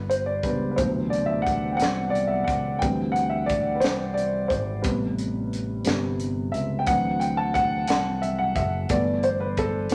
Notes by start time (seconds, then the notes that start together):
Already playing: G1 D3 G3 B3 B4
0.10 C5, closed hi-hat
0.26 D5
0.43 C#2 G3 B3 D4 B4, kick, closed hi-hat
0.71 B4
0.76 D2 B2 C3 E3 F#3 C5, kick, closed hi-hat
1.10 D5, closed hi-hat
1.26 E5
1.42 F#5
1.47 kick, closed hi-hat
1.72 G5
1.77 F#5, closed hi-hat
1.81 C2, snare
2.10 D5
2.15 closed hi-hat
2.27 E5
2.44 C#2 F#5, kick
2.49 closed hi-hat
2.79 D2 E3 G3 C4 G5, kick, closed hi-hat
3.12 F#5
3.16 closed hi-hat
3.30 E5
3.46 D5, kick, closed hi-hat
3.75 B4
3.80 C2 C5, closed hi-hat
3.84 snare
4.14 D5, closed hi-hat
4.48 G#1 C5, kick, closed hi-hat
4.82 A1 C3 G3 B3 B4, kick, closed hi-hat
5.18 closed hi-hat
5.53 closed hi-hat
5.84 G1 C3 G3 B3, snare, closed hi-hat
6.20 closed hi-hat
6.52 C#2 E5, closed hi-hat
6.79 G5
6.87 D2 E3 F#3 C4 F#5, kick, closed hi-hat
7.20 G5, closed hi-hat
7.37 A5
7.54 F#5, kick, closed hi-hat
7.88 C2 F#5, snare, closed hi-hat
8.22 E5, closed hi-hat
8.38 F#5
8.56 F#1 E5, kick, closed hi-hat
8.89 G1 E3 A3 B3 D5, kick, closed hi-hat
9.23 C5, closed hi-hat
9.40 B4
9.57 A4, kick, closed hi-hat
9.90 E1 D3 F#3 G#3 C#4, closed hi-hat